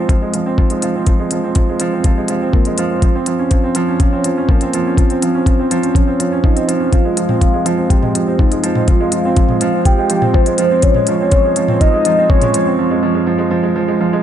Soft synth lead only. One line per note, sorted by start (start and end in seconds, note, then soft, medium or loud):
0.10 0.61 F5 loud
0.59 1.07 D#5 medium
1.08 2.07 F5 loud
2.05 2.54 G5 loud
2.54 2.98 A#4 medium
2.96 3.05 C#5 medium
3.04 4.02 C5 medium
4.00 4.51 C#5 loud
4.50 5.00 A#4 medium
4.98 5.97 C5 loud
5.96 6.44 C#5 medium
6.44 6.94 D#5 medium
6.93 7.92 F5 loud
7.90 8.41 G5 medium
8.39 8.89 D#5 medium
8.88 9.85 F5 loud
9.86 10.36 G5 loud
10.34 10.84 C5 medium
10.83 11.82 C#5 loud
11.81 12.31 D#5 medium
12.30 12.78 C#5 medium